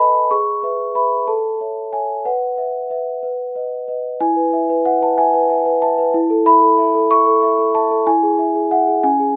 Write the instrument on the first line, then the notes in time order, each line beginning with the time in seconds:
celesta
Already playing: A4 G#5 A5
0.00 B4 D#5 B5
0.31 G#4 C#6
0.63 B4 E5
0.95 B4 E5 B5
1.28 A4 A5
1.61 C#5 E5
1.93 C#5 E5 G#5
2.25 B4 F#5
2.58 B4 E5
2.90 B4 E5
3.23 B4
3.55 B4 D#5
3.88 B4 D#5
4.21 E4 G#5
4.36 B4
4.53 E5
4.70 B4
4.85 E5 F#5
5.01 B4 A5
5.18 E5 G#5
5.34 B4
5.50 E5
5.66 B4
5.82 E5 A5
5.98 B4
6.14 E4
6.30 A4
6.46 E5 B5
6.62 A4
6.78 E5
6.95 A4
7.11 E5 C#6
7.27 A4
7.43 E5
7.58 A4
7.75 E5 A5
7.91 A4
8.07 E4 G#5
8.23 G#4
8.39 E5
8.55 G#4
8.71 E5 F#5
8.88 G#4
9.03 C#4 G#5
9.20 G#4